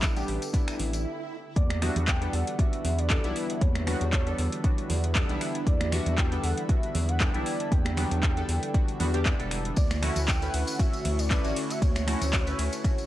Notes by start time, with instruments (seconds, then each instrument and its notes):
Already playing: analog synth bass A1, ambient pad D3 A4 E5 G5, synth keys G3 B3 D4 E4
0.02 kick, clap, closed hi-hat, tambourine
0.16 synth keys G3 B3 D4 G4, closed hi-hat, tambourine
0.28 analog synth bass A1, open hi-hat
0.42 closed hi-hat, tambourine
0.53 synth keys G3 B3 D4 E4, kick, closed hi-hat, tambourine, swell
0.68 finger snap, closed hi-hat, tambourine
0.79 analog synth bass A1, open hi-hat, low conga
0.93 closed hi-hat, tambourine
1.56 analog synth bass E2, analog synth pad D3 E3 E4 F#4 B4, soft synth lead D5, kick, closed hi-hat, high conga
1.70 finger snap, closed hi-hat, high conga
1.81 synth keys G3 B3 D4 F#4, soft synth lead E5, finger snap, open hi-hat, low conga
1.96 analog synth bass E2, closed hi-hat, low conga
2.08 soft synth lead G5, kick, clap, closed hi-hat
2.21 synth keys G3 B3 D4 A4, closed hi-hat
2.33 analog synth bass E2, soft synth lead F#5, open hi-hat
2.47 closed hi-hat
2.58 synth keys G3 B3 D4 F#4, soft synth lead E5, kick, closed hi-hat
2.73 closed hi-hat
2.85 analog synth bass E2, open hi-hat, low conga
2.99 soft synth lead D5, closed hi-hat
3.10 synth keys G3 B3 D4 A4, soft synth lead D5, kick, clap, closed hi-hat
3.23 analog synth bass B1, synth keys G3 B3 D4 E4, closed hi-hat
3.36 open hi-hat
3.50 soft synth lead E5, closed hi-hat
3.61 analog synth bass E2, soft synth lead C#5, kick, closed hi-hat, high conga
3.75 finger snap, closed hi-hat, high conga
3.87 synth keys G3 B3 D4 F#4, finger snap, open hi-hat, low conga
4.01 analog synth bass E2, closed hi-hat, low conga
4.13 kick, clap, closed hi-hat
4.26 synth keys G3 B3 D4 A4, closed hi-hat
4.38 analog synth bass E2, open hi-hat
4.52 closed hi-hat
4.64 synth keys G3 B3 D4 F#4, kick, closed hi-hat
4.78 closed hi-hat
4.90 analog synth bass E2, open hi-hat, low conga
5.04 closed hi-hat
5.15 synth keys G3 B3 D4 A4, kick, clap, closed hi-hat
5.28 analog synth bass B1, synth keys G3 B3 D4 E4, closed hi-hat
5.41 finger snap, open hi-hat
5.55 closed hi-hat
5.67 analog synth bass E2, soft synth lead D5, kick, closed hi-hat, high conga
5.81 finger snap, closed hi-hat, high conga
5.92 synth keys G3 B3 D4 F#4, soft synth lead E5, finger snap, open hi-hat, low conga
6.06 analog synth bass E2, closed hi-hat, low conga
6.18 soft synth lead G5, kick, clap, closed hi-hat
6.31 synth keys G3 B3 D4 A4, closed hi-hat
6.43 analog synth bass E2, soft synth lead F#5, open hi-hat
6.58 closed hi-hat
6.69 synth keys G3 B3 D4 F#4, soft synth lead E5, kick, closed hi-hat
6.83 closed hi-hat
6.95 analog synth bass E2, open hi-hat, low conga
7.09 soft synth lead F#5, closed hi-hat
7.20 synth keys G3 B3 D4 A4, soft synth lead G5, kick, clap, closed hi-hat
7.34 analog synth bass B1, synth keys G3 B3 D4 E4, closed hi-hat
7.46 open hi-hat
7.60 soft synth lead A5, closed hi-hat
7.72 analog synth bass E2, soft synth lead G5, kick, closed hi-hat, high conga
7.85 finger snap, closed hi-hat, high conga
7.97 synth keys F#3 G3 B3 D4, finger snap, open hi-hat, low conga
8.11 analog synth bass E2, closed hi-hat, low conga
8.23 kick, clap, closed hi-hat
8.37 synth keys G3 B3 D4 A4, closed hi-hat
8.49 analog synth bass E2, open hi-hat
8.63 closed hi-hat
8.74 synth keys G3 B3 D4 F#4, kick, closed hi-hat
8.88 closed hi-hat
9.00 analog synth bass E2, synth keys G3 B3 D4 F#4, open hi-hat, low conga
9.13 synth keys G3 B3 D4 G4, closed hi-hat
9.26 kick, clap, closed hi-hat
9.39 analog synth bass E1, synth keys G3 B3 D4 A4, closed hi-hat
9.51 finger snap, open hi-hat
9.65 closed hi-hat
9.76 analog synth bass D2, analog synth pad A3 F#4 C#6, soft synth lead D5, kick, closed hi-hat, ride, tambourine, high conga
9.91 finger snap, closed hi-hat, tambourine, high conga
10.02 synth keys A3 C#4 E4 F#4, soft synth lead E5, finger snap, open hi-hat, ride, low conga
10.16 analog synth bass D2, closed hi-hat, tambourine, low conga
10.28 soft synth lead G5, kick, clap, closed hi-hat, ride, tambourine
10.42 synth keys A3 C#4 E4 B4, closed hi-hat, tambourine
10.54 analog synth bass D2, soft synth lead F#5, open hi-hat, ride
10.67 closed hi-hat, tambourine
10.79 synth keys A3 C#4 E4 F#4, soft synth lead E5, kick, closed hi-hat, ride, tambourine
10.93 closed hi-hat, tambourine
11.05 analog synth bass D2, open hi-hat, ride, low conga
11.19 soft synth lead D5, closed hi-hat, tambourine
11.30 synth keys A3 C#4 E4 B4, soft synth lead D5, kick, clap, closed hi-hat, ride, tambourine
11.44 analog synth bass A1, synth keys A3 C#4 E4 F#4, closed hi-hat, tambourine
11.56 open hi-hat, ride
11.70 soft synth lead E5, closed hi-hat, tambourine
11.82 analog synth bass D2, soft synth lead C#5, kick, closed hi-hat, ride, tambourine, high conga
11.95 finger snap, closed hi-hat, tambourine, high conga
12.07 synth keys A3 C#4 E4 F#4, finger snap, open hi-hat, ride, low conga
12.21 analog synth bass D2, closed hi-hat, tambourine, low conga
12.33 kick, clap, closed hi-hat, ride, tambourine
12.47 synth keys A3 C#4 E4 B4, closed hi-hat, tambourine
12.59 analog synth bass D2, open hi-hat, ride
12.73 closed hi-hat, tambourine
12.84 synth keys A3 C#4 E4 F#4, kick, closed hi-hat, ride, tambourine
12.98 closed hi-hat, tambourine